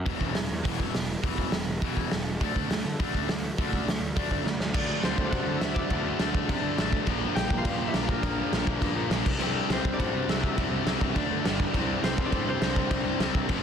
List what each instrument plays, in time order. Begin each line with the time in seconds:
0.06 picked electric bass E1, overdriven electric guitar E2 B2 E3, kick, open hi-hat
0.21 picked electric bass E1, kick
0.35 picked electric bass E1, overdriven electric guitar E2 B2, snare, open hi-hat
0.51 picked electric bass E2
0.64 picked electric bass E1, overdriven electric guitar E2 B2 E3, kick, open hi-hat
0.79 picked electric bass E1, kick
0.94 picked electric bass E1, overdriven electric guitar E2 B2, snare, open hi-hat
1.23 picked electric bass E1, overdriven electric guitar E2 B2 E3, kick, open hi-hat
1.38 kick
1.52 picked electric bass E1, overdriven electric guitar E2 B2, snare, open hi-hat
1.67 picked electric bass E1
1.82 picked electric bass E1, overdriven electric guitar E2 B2 E3, kick, open hi-hat
1.97 picked electric bass E1, kick
2.11 picked electric bass E1, overdriven electric guitar E2 B2, snare, open hi-hat
2.26 picked electric bass E1
2.41 picked electric bass D2, overdriven electric guitar D3 A3 D4, kick, open hi-hat
2.56 picked electric bass D2, kick
2.70 picked electric bass D2, overdriven electric guitar D3 A3, snare, open hi-hat
2.85 picked electric bass D3
3.00 picked electric bass D2, overdriven electric guitar D3 A3 D4, kick, open hi-hat
3.15 picked electric bass D2, kick
3.29 picked electric bass D2, overdriven electric guitar D3 A3, snare, open hi-hat
3.58 picked electric bass D2, overdriven electric guitar D3 A3 D4, kick, open hi-hat
3.73 kick
3.87 picked electric bass D2, overdriven electric guitar D3 A3, snare, open hi-hat
4.00 picked electric bass D2
4.16 picked electric bass D2, overdriven electric guitar D3 A3 D4, kick, open hi-hat
4.31 picked electric bass D2, kick
4.44 picked electric bass D2, overdriven electric guitar D3 A3, snare
4.59 picked electric bass D2, snare
4.73 picked electric bass D2, overdriven electric guitar D3 F#3 A3 D4, kick, crash
5.02 picked electric bass D2, overdriven electric guitar D3 A3 D4, harp C4 C5, snare, crash
5.18 picked electric bass D2, overdriven electric guitar D3 F#3 A3 D4, kick
5.25 harp D4 D5
5.31 picked electric bass C3, overdriven electric guitar D3 A3 D4, harp F#4 F#5, kick, crash
5.46 picked electric bass D3
5.60 picked electric bass D2, overdriven electric guitar D3 F#3 A3 D4, harp E4 E5, snare, crash
5.74 harp D4 D5, kick
5.90 picked electric bass D2, overdriven electric guitar D3 F#3 A3 D4, kick, crash
6.19 picked electric bass D2, overdriven electric guitar D3 A3 D4, snare, crash
6.34 picked electric bass D2, overdriven electric guitar D3 F#3 A3 D4, kick
6.49 picked electric bass C3, overdriven electric guitar D3 A3 D4, kick, crash
6.63 picked electric bass D3
6.78 picked electric bass A1, overdriven electric guitar D3 F#3 A3 D4, snare, crash
6.93 kick
7.06 picked electric bass A#1, overdriven electric guitar A#2 D3 F3 A#3 D4, kick, crash
7.35 picked electric bass A#1, overdriven electric guitar A#2 F3 A#3, harp G4 G5, snare, crash
7.50 picked electric bass A#1, overdriven electric guitar A#2 D3 F3 A#3 D4, kick
7.58 harp F4 F5
7.65 picked electric bass G2, overdriven electric guitar A#2 F3 A#3, harp F4 F5, kick, crash
7.79 picked electric bass A#2
7.88 harp E4 E5
7.94 picked electric bass A#1, overdriven electric guitar A#2 D3 F3 A#3 D4, harp D4 D5, snare, crash
8.09 harp A#3 A#4, kick
8.23 picked electric bass A#1, overdriven electric guitar A#2 D3 F3 A#3 D4, kick, crash
8.52 picked electric bass A#1, overdriven electric guitar A#2 F3 A#3, snare, crash
8.67 picked electric bass A#1, overdriven electric guitar A#2 D3 F3 A#3 D4, kick
8.81 picked electric bass G2, overdriven electric guitar A#2 F3 A#3, kick, crash
8.96 picked electric bass A#2
9.10 picked electric bass A#1, overdriven electric guitar A#2 D3 F3 A#3 D4, snare, crash
9.26 picked electric bass C2, kick, crash
9.39 picked electric bass C2, overdriven electric guitar C3 G3 C4 E4, crash
9.70 picked electric bass C2, overdriven electric guitar C3 G3 C4, harp C4 C5, snare, crash
9.85 picked electric bass C2, overdriven electric guitar C3 G3 C4 E4, kick
9.92 harp D4 D5
10.00 picked electric bass A2, overdriven electric guitar C3 G3 C4, harp F#4 F#5, kick, crash
10.13 picked electric bass C3
10.28 picked electric bass C2, overdriven electric guitar C3 G3 C4 E4, harp E4 E5, snare, crash
10.44 harp D4 D5, kick
10.56 picked electric bass C2, overdriven electric guitar C3 G3 C4, kick, crash
10.61 overdriven electric guitar E4
10.86 picked electric bass C2, overdriven electric guitar C3 G3 C4, snare, crash
11.01 picked electric bass C2, overdriven electric guitar C3 G3 C4 E4, kick
11.14 picked electric bass D2, overdriven electric guitar D3 A3 D4 A4, kick, crash
11.31 picked electric bass D3
11.45 picked electric bass G1, overdriven electric guitar G2 D3 G3 D4 G4 D5, snare, crash
11.60 kick
11.74 picked electric bass C2, overdriven electric guitar C3 E3 G3 C4 E4 C5, kick, crash
12.03 picked electric bass C2, overdriven electric guitar C3 G3 C4, harp C4 C5, snare, crash
12.18 picked electric bass C2, overdriven electric guitar C3 E3 G3 C4 E4 C5, kick
12.25 harp D4 D5
12.32 picked electric bass A2, overdriven electric guitar C3 G3 C4, kick, crash
12.47 picked electric bass C3, harp C4 C5
12.61 picked electric bass C2, overdriven electric guitar C3 E3 G3 C4 E4 C5, snare, crash
12.76 kick
12.91 picked electric bass C2, overdriven electric guitar C3 E3 G3 C4 E4 C5, kick, crash
13.20 picked electric bass C2, overdriven electric guitar C3 G3 C4, snare, crash
13.35 picked electric bass C2, overdriven electric guitar C3 E3 G3 C4 E4 C5, kick
13.49 picked electric bass F1, overdriven electric guitar F2 C3 F3 C4 F4 C5, kick, crash